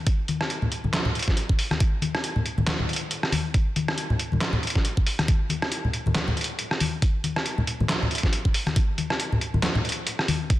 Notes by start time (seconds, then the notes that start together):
0.07 kick, closed hi-hat
0.28 closed hi-hat, high conga
0.41 cross-stick
0.50 closed hi-hat
0.62 low conga
0.72 closed hi-hat
0.84 high conga, low conga
0.93 snare, clap, closed hi-hat
1.05 low conga
1.15 closed hi-hat
1.19 closed hi-hat
1.23 closed hi-hat
1.28 kick, snare
1.37 closed hi-hat
1.49 kick
1.59 open hi-hat
1.71 cross-stick, closed hi-hat, high conga
1.80 kick, closed hi-hat
2.02 closed hi-hat, high conga
2.15 cross-stick
2.24 closed hi-hat
2.36 low conga
2.46 closed hi-hat
2.58 high conga, low conga
2.67 snare, clap, closed hi-hat, high conga
2.80 low conga
2.89 closed hi-hat
2.93 closed hi-hat
2.96 closed hi-hat
3.11 closed hi-hat
3.23 cross-stick
3.32 open hi-hat, high conga
3.54 kick, closed hi-hat
3.76 closed hi-hat, high conga
3.88 cross-stick
3.98 closed hi-hat
4.10 low conga
4.19 closed hi-hat
4.32 high conga, low conga
4.41 snare, clap, closed hi-hat
4.53 low conga
4.63 closed hi-hat
4.67 closed hi-hat
4.70 closed hi-hat
4.75 kick, snare
4.85 closed hi-hat
4.97 kick
5.07 open hi-hat
5.19 cross-stick, closed hi-hat, high conga
5.28 kick, closed hi-hat
5.50 closed hi-hat, high conga
5.62 cross-stick
5.72 closed hi-hat
5.85 low conga
5.93 closed hi-hat
6.06 high conga, low conga
6.15 snare, clap, closed hi-hat, high conga
6.28 low conga
6.37 closed hi-hat
6.41 closed hi-hat
6.44 closed hi-hat
6.59 closed hi-hat
6.71 cross-stick
6.80 open hi-hat, high conga
7.02 kick, closed hi-hat
7.24 closed hi-hat, high conga
7.36 cross-stick
7.46 closed hi-hat
7.58 low conga
7.67 closed hi-hat
7.80 high conga, low conga
7.89 snare, clap, closed hi-hat
8.03 low conga
8.11 closed hi-hat
8.15 closed hi-hat
8.18 closed hi-hat
8.23 kick, snare
8.33 closed hi-hat
8.45 kick
8.54 open hi-hat
8.67 cross-stick, closed hi-hat, high conga
8.76 kick, closed hi-hat
8.98 closed hi-hat, high conga
9.10 cross-stick
9.20 closed hi-hat
9.32 low conga
9.41 closed hi-hat
9.54 high conga, low conga
9.62 snare, clap, closed hi-hat, high conga
9.75 low conga
9.85 closed hi-hat
9.89 closed hi-hat
9.92 closed hi-hat
10.07 closed hi-hat
10.19 cross-stick
10.28 open hi-hat, high conga
10.50 kick, closed hi-hat